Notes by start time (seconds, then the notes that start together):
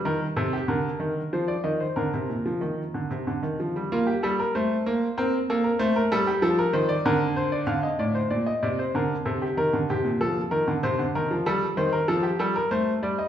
0.05 D#3 A#4
0.36 C3 A4
0.53 G4
0.68 D3 A#4
1.00 D#3
1.33 F3 C5
1.48 D5
1.64 D#3 D#5
1.80 C5
1.96 D3 A#4
2.14 C3
2.30 A#2
2.46 F3
2.61 D#3
2.94 D3
3.11 C3
3.27 D3
3.43 D#3
3.60 F3
3.76 G3
3.92 A#3 F4
4.07 G4
4.23 G3 A4
4.40 A#4
4.55 A3 C5
4.86 A#3
5.18 C4 A#4
5.50 A#3 A4
5.64 A#4
5.79 A3 C5
5.96 A#4
6.12 G3 A4
6.27 G4
6.42 F3 A4
6.59 A#4
6.73 D#3 C5
6.89 D5
7.06 D3 A#4
7.36 C5
7.52 D5
7.67 D3 F5
7.83 D#5
7.99 A2 D5
8.15 C5
8.30 A#2 D5
8.46 D#5
8.63 C3 D5
8.79 C5
8.95 D3 A#4
9.26 C3 A4
9.42 G4
9.57 D#3 A#4
9.73 D3
9.90 C3 G4
10.04 A#2
10.21 F3 A4
10.51 D#3 A#4
10.68 D3
10.83 C3 C5
10.99 D3
11.15 D#3 A#4
11.31 F3
11.46 G3 A4
11.77 D#3 C5
11.93 A#4
12.08 F3 A4
12.23 G4
12.39 G3 A4
12.56 A#4
12.71 A3 C5
13.03 G3 D5
13.19 D#5